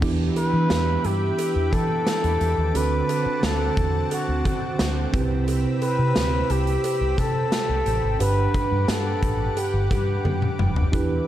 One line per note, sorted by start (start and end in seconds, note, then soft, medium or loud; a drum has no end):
0.01 0.28 E2 loud
0.01 1.01 E3 medium
0.01 2.70 B3 medium
0.01 2.71 D4 medium
0.01 2.71 E4 medium
0.01 2.72 G4 medium
0.01 2.72 B4 medium
0.01 2.72 E5 medium
0.01 2.72 G5 medium
0.01 5.10 D6 medium
0.01 kick loud
0.01 crash loud
0.01 cowbell medium
0.36 1.07 B4 loud
0.36 closed hi-hat medium
0.36 cowbell medium
0.53 0.66 E3 medium
0.70 0.96 E2 loud
0.70 snare loud
0.70 closed hi-hat medium
0.70 tambourine medium
0.70 cowbell medium
1.04 1.30 G2 medium
1.04 1.76 G4 loud
1.04 closed hi-hat medium
1.39 closed hi-hat loud
1.39 cowbell medium
1.56 1.69 E2 medium
1.73 1.98 E3 loud
1.73 2.78 A4 loud
1.73 kick medium
1.73 closed hi-hat medium
1.73 cowbell medium
2.07 snare loud
2.07 closed hi-hat medium
2.07 tambourine medium
2.07 cowbell medium
2.24 2.37 E2 medium
2.24 closed hi-hat medium
2.41 2.54 E2 medium
2.41 closed hi-hat medium
2.58 2.71 D#2 medium
2.74 3.01 D2 loud
2.74 3.73 D3 medium
2.74 5.09 C4 medium
2.74 8.17 C4 medium
2.74 5.09 D4 medium
2.74 5.10 F#4 medium
2.74 5.10 A4 medium
2.74 3.46 B4 loud
2.74 5.11 F#5 medium
2.74 5.11 A5 medium
2.74 closed hi-hat medium
2.74 cowbell medium
3.09 closed hi-hat medium
3.09 cowbell medium
3.26 3.39 D3 loud
3.43 3.69 D2 medium
3.43 4.12 A4 loud
3.43 snare loud
3.43 closed hi-hat medium
3.43 tambourine medium
3.43 cowbell medium
3.77 4.03 E2 medium
3.77 kick medium
3.77 closed hi-hat medium
4.11 4.44 F#4 loud
4.11 closed hi-hat loud
4.11 cowbell medium
4.28 4.41 D2 loud
4.45 4.71 D3 loud
4.45 5.10 F#4 medium
4.45 kick medium
4.45 closed hi-hat medium
4.45 cowbell medium
4.79 5.05 D2 loud
4.79 snare loud
4.79 closed hi-hat medium
4.79 tambourine medium
4.79 cowbell medium
5.12 5.65 C2 loud
5.12 6.12 C3 medium
5.12 7.82 C4 medium
5.12 7.82 E4 medium
5.12 11.27 G4 medium
5.12 7.83 G4 medium
5.12 7.83 B4 medium
5.12 8.18 B5 medium
5.12 8.17 E6 medium
5.12 kick loud
5.12 closed hi-hat medium
5.48 closed hi-hat medium
5.48 cowbell medium
5.82 6.52 B4 loud
5.82 closed hi-hat medium
5.82 cowbell medium
5.99 6.12 C3 loud
6.16 6.42 D2 medium
6.16 snare loud
6.16 closed hi-hat medium
6.16 tambourine medium
6.16 cowbell medium
6.50 6.76 C2 loud
6.50 7.21 G4 loud
6.50 closed hi-hat medium
6.67 closed hi-hat medium
6.84 closed hi-hat medium
6.84 cowbell medium
7.01 7.14 C2 loud
7.18 7.44 C3 loud
7.18 8.21 A4 loud
7.18 kick medium
7.18 closed hi-hat medium
7.18 cowbell medium
7.52 snare loud
7.52 closed hi-hat medium
7.52 tambourine medium
7.52 cowbell medium
7.69 7.82 C2 medium
7.86 7.99 A1 loud
7.86 closed hi-hat medium
8.03 8.16 G#1 medium
8.19 8.46 G1 loud
8.19 9.19 G2 medium
8.19 10.88 D4 medium
8.19 10.89 G4 medium
8.19 10.90 B4 medium
8.19 8.85 B4 loud
8.19 10.90 B4 medium
8.19 10.89 F#5 medium
8.19 10.90 F#5 medium
8.19 11.27 D6 loud
8.19 closed hi-hat medium
8.19 cowbell medium
8.54 kick medium
8.54 closed hi-hat medium
8.54 cowbell medium
8.71 8.84 G2 medium
8.88 9.14 G2 loud
8.88 9.59 A4 loud
8.88 snare loud
8.88 closed hi-hat medium
8.88 tambourine medium
8.88 cowbell medium
9.23 9.48 A1 medium
9.23 kick medium
9.23 closed hi-hat medium
9.57 9.91 G4 loud
9.57 closed hi-hat medium
9.57 cowbell medium
9.74 9.87 G1 loud
9.91 10.16 G2 medium
9.91 10.56 G4 medium
9.91 kick medium
9.91 closed hi-hat medium
9.91 cowbell medium
10.25 10.50 F#2 loud
10.25 high tom medium
10.25 cowbell medium
10.42 mid tom medium
10.59 10.84 F1 medium
10.59 mid tom medium
10.76 floor tom loud
10.92 11.19 E2 loud
10.92 11.27 E3 medium
10.92 11.27 D4 medium
10.92 11.27 E4 medium
10.92 11.27 G4 medium
10.92 11.27 B4 medium
10.92 11.27 E5 medium
10.92 kick loud
10.92 closed hi-hat medium
10.92 cowbell medium